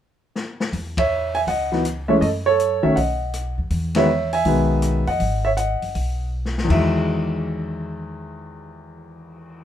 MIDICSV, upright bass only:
0, 0, Header, 1, 2, 480
1, 0, Start_track
1, 0, Key_signature, 4, "major"
1, 0, Tempo, 373599
1, 934, Time_signature, 4, 2, 24, 8
1, 12385, End_track
2, 0, Start_track
2, 0, Title_t, "Upright bass"
2, 0, Program_c, 0, 32
2, 933, Note_on_c, 0, 40, 73
2, 1843, Note_off_c, 0, 40, 0
2, 1889, Note_on_c, 0, 37, 67
2, 2799, Note_off_c, 0, 37, 0
2, 2846, Note_on_c, 0, 42, 68
2, 3590, Note_off_c, 0, 42, 0
2, 3647, Note_on_c, 0, 36, 51
2, 3797, Note_off_c, 0, 36, 0
2, 3808, Note_on_c, 0, 35, 63
2, 4551, Note_off_c, 0, 35, 0
2, 4600, Note_on_c, 0, 39, 62
2, 4752, Note_off_c, 0, 39, 0
2, 4760, Note_on_c, 0, 40, 73
2, 5673, Note_off_c, 0, 40, 0
2, 5717, Note_on_c, 0, 35, 62
2, 6465, Note_off_c, 0, 35, 0
2, 6522, Note_on_c, 0, 41, 59
2, 6672, Note_off_c, 0, 41, 0
2, 6682, Note_on_c, 0, 32, 74
2, 7428, Note_off_c, 0, 32, 0
2, 7478, Note_on_c, 0, 30, 49
2, 7631, Note_off_c, 0, 30, 0
2, 7644, Note_on_c, 0, 35, 67
2, 8557, Note_off_c, 0, 35, 0
2, 8603, Note_on_c, 0, 40, 78
2, 12385, Note_off_c, 0, 40, 0
2, 12385, End_track
0, 0, End_of_file